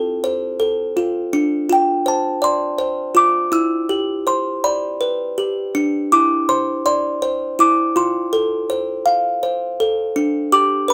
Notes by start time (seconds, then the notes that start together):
Already playing: C4 F4 A4 A5
0.24 C5
0.60 A4
0.97 F4
1.33 D4
1.69 F4 G5
2.06 C5 A5
2.42 D5 C6
2.79 C5
3.15 F4 D6
3.52 E4 E6
3.89 G4
4.27 C5 C6
4.64 D5 B5
5.01 B4
5.38 G4
5.75 D4
6.12 E4 D6
6.49 C5 C6
6.86 D5 C6
7.22 C5
7.59 E4 D6
7.96 F4 C6
8.33 A4
8.70 C5
9.06 F5
9.43 C5
9.80 A4
10.16 D4
10.52 G4 D6
10.88 B4 B5